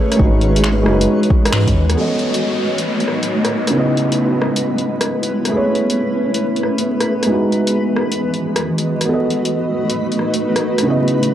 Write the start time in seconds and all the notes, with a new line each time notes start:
Already playing: A3 C#4 G#4 B4 C#5
0.12 cross-stick, closed hi-hat
0.16 G#1 G#3 D#4, kick
0.21 F#4 B4
0.41 closed hi-hat
0.56 closed hi-hat
0.64 finger snap
0.72 E3
0.83 F#1 G#3 D#4 D#5, cross-stick
0.88 F#4 B4
1.01 F#4, closed hi-hat
1.23 closed hi-hat
1.30 kick
1.45 cross-stick, closed hi-hat
1.53 G#2, finger snap
1.67 kick, closed hi-hat
1.75 D#2
1.90 B3, cross-stick, closed hi-hat
1.97 A3 B3 A4 B4, downlifter
2.01 D#5
2.19 closed hi-hat
2.34 closed hi-hat
2.55 D#4
2.78 closed hi-hat
3.00 closed hi-hat
3.08 cross-stick
3.23 closed hi-hat
3.45 cross-stick, closed hi-hat
3.67 C#3, cross-stick, closed hi-hat
3.73 G#3 B3 E4
3.79 D#5
3.97 closed hi-hat
4.12 closed hi-hat
4.34 C#4
4.42 cross-stick
4.56 E4, closed hi-hat
4.78 closed hi-hat
5.01 cross-stick, closed hi-hat
5.23 closed hi-hat
5.45 A3, cross-stick, closed hi-hat
5.52 A3 G#4 B4
5.57 C#5
5.75 closed hi-hat
5.90 closed hi-hat
6.16 G#4
6.34 closed hi-hat
6.56 closed hi-hat
6.63 cross-stick
6.78 closed hi-hat
7.00 cross-stick, closed hi-hat
7.23 G#3, cross-stick, closed hi-hat
7.29 G#3 D#4 F#4
7.34 B4
7.50 E3, closed hi-hat
7.67 closed hi-hat
7.93 F#4, cross-stick
8.01 D#5
8.12 closed hi-hat
8.34 closed hi-hat
8.56 cross-stick, closed hi-hat
8.78 closed hi-hat
9.01 cross-stick, closed hi-hat
9.05 A3 B3 A4
9.13 D#5
9.26 D#4
9.30 closed hi-hat
9.45 closed hi-hat
9.90 closed hi-hat
10.12 closed hi-hat
10.19 cross-stick
10.34 closed hi-hat
10.56 cross-stick, closed hi-hat
10.78 cross-stick, closed hi-hat
10.82 C#3 G#3 B3
10.88 E4 D#5
11.08 closed hi-hat
11.23 closed hi-hat
11.28 C#4